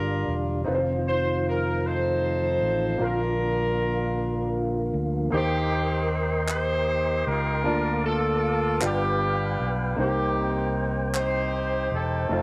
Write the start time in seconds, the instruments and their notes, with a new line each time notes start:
Already playing: fingered electric bass G1, grand piano G2 G3 D4 F4 A#4, tonewheel organ D3 G3 D4 F4, horn section D4 F4 A#4
0.28 fingered electric bass E1
0.64 fingered electric bass F1, tonewheel organ D#3, grand piano C4 D#4 F4 B4
0.69 tonewheel organ F3 C4
0.75 grand piano C5
1.08 horn section C5
1.49 horn section A#4
1.85 horn section D#4 A4 C5
2.62 fingered electric bass A1
2.98 fingered electric bass A#1, grand piano A#2 A#3 D4 F4 A#4, tonewheel organ D3 A#3, horn section D4
3.02 horn section F4 A#4
4.94 fingered electric bass D2
5.30 fingered electric bass D#2, grand piano D#3 A#3 D#4 G4 C5, tonewheel organ A#4 D#5 G5 C6
5.35 horn section A#3 C4 G4
6.48 horn section G4 C5, clap
7.27 fingered electric bass C#2, horn section F4 A#4
7.64 fingered electric bass D2, grand piano D3 A#3 F4 D5 A5, tonewheel organ A#3 F5 A5 D6
8.06 horn section F4 A4
8.81 fingered electric bass G1, grand piano G2 B3 F4 G4 D5, tonewheel organ B4 G5, clap
8.85 horn section B3 D4 G4
9.60 fingered electric bass B1
9.96 fingered electric bass C2, grand piano C3 A#3 D#4 G4 C5, tonewheel organ C5
10.01 horn section A#3 D#4 G4
11.14 horn section D#4 G4 C5, clap
11.92 fingered electric bass E1, horn section C4 D#4 A4
12.29 fingered electric bass F1, grand piano A3 D#4 F4 C5, tonewheel organ C5 F5 A5